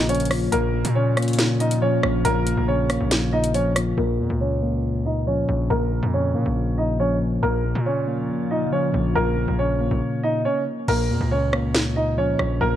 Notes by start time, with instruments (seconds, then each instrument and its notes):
Already playing: 808-style bass A#1, tine electric piano A#2 C#3 F3 A#3, ambient pad C#3 F3 A#3 F4
0.09 tine electric piano F3, grand piano C#4 C#5, closed hi-hat
0.15 closed hi-hat
0.20 closed hi-hat
0.25 closed hi-hat
0.31 tine electric piano A#2, cross-stick, open hi-hat
0.52 808-style bass A#1, tine electric piano A#2, ambient pad C#3 F3 F4, grand piano A#3 A#4, closed hi-hat
0.74 tine electric piano A#2
0.85 808-style bass A#2, closed hi-hat
0.95 tine electric piano C#3, grand piano C#4 C#5
1.17 tine electric piano A#3, cross-stick, closed hi-hat
1.22 closed hi-hat
1.28 closed hi-hat
1.33 closed hi-hat
1.39 tine electric piano A#2, snare, closed hi-hat
1.60 tine electric piano A#2, grand piano D#4 D#5, closed hi-hat
1.71 closed hi-hat
1.82 tine electric piano F3, grand piano C#4 C#5
2.03 808-style bass A#1, tine electric piano A#2, cross-stick
2.25 808-style bass A#1, tine electric piano A#2, grand piano A#3 A#4, closed hi-hat
2.47 tine electric piano A#2, closed hi-hat
2.57 808-style bass A#1
2.68 tine electric piano C#3, grand piano C#4 C#5
2.90 tine electric piano A#3, cross-stick, closed hi-hat
3.00 808-style bass A#1
3.11 tine electric piano A#2, snare, closed hi-hat
3.33 tine electric piano A#2, grand piano D#4 D#5
3.44 closed hi-hat
3.54 tine electric piano F3, grand piano C#4 C#5, closed hi-hat
3.76 tine electric piano A#2, cross-stick, closed hi-hat
3.98 808-style bass A#1, tine electric piano A#2, grand piano A#3 A#4
4.19 808-style bass F2, tine electric piano A#2
4.30 808-style bass C#2
4.41 tine electric piano C#3, grand piano C#4 C#5
4.62 tine electric piano A#3
4.84 tine electric piano A#2
5.05 tine electric piano A#2, grand piano D#4 D#5
5.27 tine electric piano F3, grand piano C#4 C#5
5.49 808-style bass A#1, tine electric piano A#2
5.70 808-style bass A#1, tine electric piano A#2, grand piano A#3 A#4
5.92 tine electric piano A#2
6.03 808-style bass F2
6.13 tine electric piano C#3, grand piano C#4 C#5
6.35 808-style bass A#2, tine electric piano A#3
6.46 808-style bass A#1
6.57 tine electric piano A#2
6.78 tine electric piano A#2, grand piano D#4 D#5
7.00 tine electric piano F3, grand piano C#4 C#5
7.21 tine electric piano A#2
7.43 808-style bass A#1, tine electric piano A#2, ambient pad C#3 F3 A#3 F4, grand piano A#3 A#4
7.64 tine electric piano A#2
7.75 808-style bass A#2
7.86 tine electric piano C#3, grand piano C#4 C#5
8.08 tine electric piano A#3
8.29 tine electric piano A#2
8.51 tine electric piano A#2, grand piano D#4 D#5
8.72 tine electric piano F3, grand piano C#4 C#5
8.94 808-style bass A#1, tine electric piano A#2
9.15 808-style bass A#1, tine electric piano A#2, grand piano A#3 A#4
9.37 tine electric piano A#2
9.48 808-style bass A#1
9.59 tine electric piano C#3, grand piano C#4 C#5
9.80 tine electric piano A#3
9.91 808-style bass A#1
10.23 grand piano D#4 D#5
10.45 grand piano C#4 C#5
10.88 808-style bass A#1, tine electric piano A#2, grand piano A#3 A#4, crash
11.10 808-style bass F2, tine electric piano A#2
11.21 808-style bass C#2
11.31 tine electric piano C#3, grand piano C#4 C#5
11.53 tine electric piano A#3, cross-stick
11.75 tine electric piano A#2, snare
11.96 tine electric piano A#2, grand piano D#4 D#5
12.18 tine electric piano F3, grand piano C#4 C#5
12.39 808-style bass A#1, tine electric piano A#2, cross-stick
12.61 808-style bass A#1, tine electric piano A#2, grand piano A#3 A#4